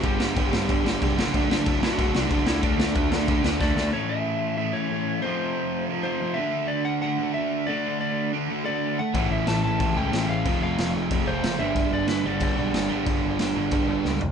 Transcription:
<<
  \new Staff \with { instrumentName = "Lead electric guitar" } { \time 4/4 \key d \major \tempo 4 = 184 g'2.~ g'8 r8 | r8 d'4 e'16 fis'8. d'4 e'8 | d'2. d''4 | \key a \mixolydian cis''8 e''4. e''8 cis''4. |
c''2 r8 c''4 e''8~ | e''8 d''8 fis''8 fis''4 e''4 d''8~ | d''8 d''4 r4 d''4 fis''8~ | fis''8 e''8 a''8 a''4 g''4 f''8~ |
f''8 f''4 r4 c''4 e''8~ | e''8 d''8 b'8 d''2~ d''8~ | d''2. r4 | }
  \new Staff \with { instrumentName = "Overdriven electric guitar" } { \time 4/4 \key d \major <g b d' g'>8 <g b d' g'>8 <g b d' g'>8 <g b d' g'>8 <g b d' g'>8 <g b d' g'>8 <g b d' g'>8 <fis a d' fis'>8 | <fis a d' fis'>8 <fis a d' fis'>8 <fis a d' fis'>8 <fis a d' fis'>8 <fis a d' fis'>8 <fis a d' fis'>8 <fis a d' fis'>8 <d a d' fis'>8 | <d a d' fis'>8 <d a d' fis'>8 <d a d' fis'>8 <d a d' fis'>8 <d a d' fis'>8 <d a d' fis'>8 <d a d' fis'>8 <d a d' fis'>8 | \key a \mixolydian <a, e a cis' e'>2~ <a, e a cis' e'>8 <a, e a cis' e'>8 <a, e a cis' e'>4 |
<f a c' f'>2~ <f a c' f'>8 <f a c' f'>8 <f a c' f'>8 <d a d' fis'>8~ | <d a d' fis'>2 <d a d' fis'>8 <d a d' fis'>4 <d a d' fis'>8~ | <d a d' fis'>2 <d a d' fis'>8 <d a d' fis'>4 r8 | <a, e a cis' e'>2~ <a, e a cis' e'>8 <a, e a cis' e'>8 <a, e a cis' e'>4 |
<f a c' f'>2~ <f a c' f'>8 <f a c' f'>8 <f a c' f'>8 <g, d g b d'>8~ | <g, d g b d'>2 <g, d g b d'>8 <g, d g b d'>4 <g, d g b d'>8~ | <g, d g b d'>2 <g, d g b d'>8 <g, d g b d'>4 r8 | }
  \new Staff \with { instrumentName = "Overdriven electric guitar" } { \time 4/4 \key d \major <g b d' g'>2~ <g b d' g'>8 <g b d' g'>8 <g b d' g'>8 <fis a d' fis'>8~ | <fis a d' fis'>2 <fis a d' fis'>8 <fis a d' fis'>4 <d a d' fis'>8~ | <d a d' fis'>2 <d a d' fis'>8 <d a d' fis'>4 r8 | \key a \mixolydian r1 |
r1 | r1 | r1 | <a, e a cis' e'>2~ <a, e a cis' e'>8 <a, e a cis' e'>8 <a, e a cis' e'>4 |
<f a c' f'>2~ <f a c' f'>8 <f a c' f'>8 <f a c' f'>8 <g b d' g'>8~ | <g b d' g'>2 <g b d' g'>8 <g b d' g'>4 <g b d' g'>8~ | <g b d' g'>2 <g b d' g'>8 <g b d' g'>4 r8 | }
  \new Staff \with { instrumentName = "Distorted electric guitar" } { \clef bass \time 4/4 \key d \major <g, d g>8 <g, d g>8 <g, d g>8 <g, d g>8 <g, d g>8 <g, d g>8 <g, d g>8 <d a d'>8 | <d a d'>8 <d a d'>8 <d a d'>8 <d a d'>8 <d a d'>8 <d a d'>8 <d a d'>8 <d a d'>8 | <d a d'>8 <d a d'>8 <d a d'>8 <d a d'>8 <d a d'>8 <d a d'>8 <d a d'>8 <d a d'>8 | \key a \mixolydian <a, e a>2 <a, e a>2 |
<f, c f>2 <f, c f>4. <d a d'>8~ | <d a d'>4. <d a d'>2 <d a d'>8~ | <d a d'>4. <d a d'>2 r8 | <a, e a>2 <a, e a>2 |
<f, c f>2 <f, c f>4. <g, d g>8~ | <g, d g>4. <g, d g>2 <g, d g>8~ | <g, d g>4. <g, d g>2 r8 | }
  \new Staff \with { instrumentName = "Picked electric bass" } { \clef bass \time 4/4 \key d \major g,,8 g,,8 g,,8 g,,8 g,,8 g,,8 f,,8 fis,,8 | fis,,8 fis,,8 fis,,8 fis,8 fis,,8 c,8 fis,,8 d,8 | d,8 d,8 d,8 d,8 d,8 d,8 d,8 d,8 | \key a \mixolydian r1 |
r1 | r1 | r1 | a,,8 a,,8 a,,8 a,,8 a,,8 cis,8 a,,8 a,,8 |
f,,8 f,,8 f,,8 f,,8 f,,8 f,,8 fis,,8 g,,8 | g,,8 g,,8 g,,8 g,,8 g,,8 b,,8 g,,8 g,,8 | g,,8 g,,8 g,,8 g,,8 g,,8 g,,8 cis,4 | }
  \new DrumStaff \with { instrumentName = "Drums" } \drummode { \time 4/4 <cymc bd>8 sn8 <cymc bd>8 sn8 <cymc bd>8 sn8 <cymc bd>8 sn8 | <cymc bd>8 sn8 <cymc bd>8 sn8 <cymc bd>8 sn8 <cymc bd>8 sn8 | <cymc bd>8 sn8 <cymc bd>8 sn8 <cymc bd>8 sn8 <bd sn>8 sn8 | r4 r4 r4 r4 |
r4 r4 r4 r4 | r4 r4 r4 r4 | r4 r4 r4 r4 | <cymc bd>4 <cymc sn>4 <cymc bd>4 <cymc sn>4 |
<cymc bd>4 <cymc sn>4 <cymc bd>4 <cymc sn>4 | <cymc bd>4 <cymc sn>4 <cymc bd>4 <cymc sn>4 | <cymc bd>4 <cymc sn>4 <cymc bd>4 sn8 tomfh8 | }
>>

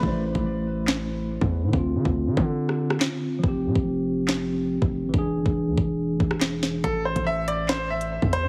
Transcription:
<<
  \new Staff \with { instrumentName = "Grand piano" } { \time 4/4 \key a \minor \tempo 4 = 141 r1 | r1 | r1 | r1 |
a'8 c''8 e''8 d''8 c''8 e''4 c''8 | }
  \new Staff \with { instrumentName = "Tine electric piano" } { \time 4/4 \key a \minor <a e' c''>1 | <d c' f'>1 | <f c' g'>1 | <e d' gis'>1 |
r1 | }
  \new Staff \with { instrumentName = "808-style bass" } { \clef bass \time 4/4 \key a \minor a,,8. a,,2~ a,,8 e,8 a,16 | d,8 d16 d,8 d16 d4. r4 | f,,8 c16 f,,2~ f,,8 f,,8 a,,16 | e,,8 gis,,16 e,,8 e,16 e,,8. f,,16 e,,4. |
a,,8. a,,2~ a,,8 e,8 a,16 | }
  \new DrumStaff \with { instrumentName = "Drums" } \drummode { \time 4/4 bd8. bd16 r4 <hc sn>4 r16 bd8. | bd8. bd16 r8 bd8 r16 ss8 ss16 <hc sn>4 | bd8. bd16 r4 <hc sn>4 r16 bd8. | bd8. bd16 r8 bd8 r8 bd16 ss16 <hc sn>8 sn8 |
<hh bd>8. <hh bd>16 r8 hh8 <hc hh sn>8. hh16 r16 bd16 hh8 | }
>>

